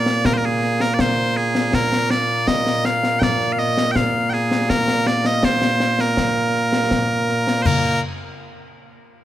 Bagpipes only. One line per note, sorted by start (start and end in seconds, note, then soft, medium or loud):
0.00 8.00 A#2 medium
0.00 8.00 A#3 medium
0.00 0.26 D5 loud
0.26 0.33 A#4 loud
0.33 0.45 A#4 medium
0.33 0.37 C5 medium
0.45 0.81 G#4 medium
0.81 0.94 A#4 medium
0.94 1.01 D5 medium
1.01 1.37 C5 loud
1.37 1.75 G#4 medium
1.75 2.10 A#4 loud
2.10 2.47 D5 medium
2.47 2.85 D#5 loud
2.85 3.19 F5 loud
3.19 3.53 D5 loud
3.19 3.23 G5 loud
3.53 3.59 F5 medium
3.59 3.91 D#5 loud
3.91 3.96 G5 loud
3.96 4.30 F5 loud
4.30 4.70 G#4 medium
4.30 4.33 G5 medium
4.70 5.07 A#4 loud
5.07 5.26 D5 medium
5.26 5.45 D#5 loud
5.45 6.00 C5 medium
6.00 7.62 A#4 medium
7.62 8.00 A#4 medium
7.62 7.66 C5 medium